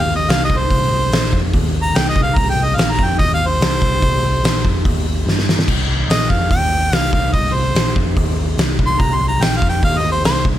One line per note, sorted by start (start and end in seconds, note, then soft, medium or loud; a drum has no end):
0.00 0.26 D#2 loud
0.00 0.15 F5 medium
0.16 0.32 D#5 loud
0.29 0.48 C2 medium
0.29 0.43 F5 loud
0.29 snare loud
0.29 open hi-hat medium
0.45 0.59 D#5 loud
0.50 0.69 C2 loud
0.50 kick loud
0.58 1.37 C5 loud
0.70 0.90 C2 loud
0.70 kick loud
0.70 open hi-hat medium
0.91 1.10 C2 medium
1.11 1.31 A#1 medium
1.11 snare loud
1.11 open hi-hat medium
1.33 1.52 F2 medium
1.33 kick loud
1.53 1.92 D#2 medium
1.53 kick loud
1.53 open hi-hat medium
1.83 1.98 A#5 loud
1.94 2.13 C2 medium
1.94 2.08 G5 medium
1.94 snare loud
1.94 open hi-hat medium
2.09 2.22 D#5 medium
2.15 2.35 C2 medium
2.15 kick loud
2.23 2.38 F5 medium
2.37 2.55 C2 medium
2.37 2.49 A#5 loud
2.37 kick loud
2.37 open hi-hat medium
2.50 2.65 G5 loud
2.55 2.75 C2 medium
2.64 2.78 D#5 loud
2.76 2.96 A#1 medium
2.76 2.93 F5 medium
2.76 snare loud
2.76 open hi-hat medium
2.91 3.06 A#5 loud
2.99 3.18 F2 medium
2.99 kick loud
3.04 3.18 G5 medium
3.19 3.58 D#2 loud
3.19 3.32 D#5 loud
3.19 kick loud
3.19 open hi-hat medium
3.34 3.48 F5 loud
3.47 4.67 C5 loud
3.60 3.79 C2 medium
3.60 snare loud
3.60 open hi-hat medium
3.82 4.01 C2 loud
3.82 kick loud
4.02 4.21 C2 loud
4.02 kick loud
4.02 open hi-hat medium
4.23 4.42 C2 medium
4.43 4.63 A#1 medium
4.43 snare loud
4.43 open hi-hat medium
4.65 4.84 F2 loud
4.65 kick loud
4.85 5.24 D#2 loud
4.85 kick loud
4.85 open hi-hat medium
5.26 5.65 G2 medium
5.26 snare medium
5.39 snare medium
5.49 snare medium
5.59 snare medium
5.68 5.87 C2 medium
5.68 kick loud
5.68 crash loud
5.88 6.07 C2 medium
6.09 6.28 A#1 medium
6.09 6.32 D#5 medium
6.09 snare loud
6.09 open hi-hat medium
6.30 6.49 F2 medium
6.30 6.50 F5 medium
6.30 kick medium
6.51 6.89 D#2 medium
6.51 6.96 G5 loud
6.51 kick loud
6.51 open hi-hat medium
6.92 7.11 C2 medium
6.92 7.12 F5 loud
6.92 snare loud
6.92 open hi-hat medium
7.13 7.32 C2 medium
7.13 7.32 F5 medium
7.13 kick loud
7.33 7.53 C2 loud
7.33 7.55 D#5 medium
7.33 kick loud
7.33 open hi-hat medium
7.54 7.73 C2 medium
7.54 7.94 C5 loud
7.75 7.94 A#1 medium
7.75 snare loud
7.75 open hi-hat medium
7.96 8.15 F2 loud
7.96 kick loud
8.17 8.55 D#2 loud
8.17 kick loud
8.17 open hi-hat medium
8.57 8.77 C2 medium
8.57 snare loud
8.57 open hi-hat medium
8.79 8.98 C2 loud
8.79 kick loud
8.87 9.02 C6 loud
9.00 9.19 C2 loud
9.00 9.16 A#5 loud
9.00 kick loud
9.00 open hi-hat medium
9.15 9.27 C6 loud
9.20 9.39 C2 medium
9.28 9.44 A#5 loud
9.40 9.60 A#1 medium
9.40 9.55 G5 medium
9.40 snare loud
9.40 open hi-hat medium
9.57 9.69 F5 medium
9.62 9.81 F2 medium
9.62 kick loud
9.69 9.82 G5 medium
9.83 10.21 D#2 medium
9.83 9.99 F5 loud
9.83 kick loud
9.83 open hi-hat medium
9.98 10.10 D#5 loud
10.12 10.24 C5 medium
10.24 10.43 C2 medium
10.24 10.45 C5 loud
10.24 snare loud
10.24 open hi-hat medium
10.45 10.59 C2 loud
10.45 kick loud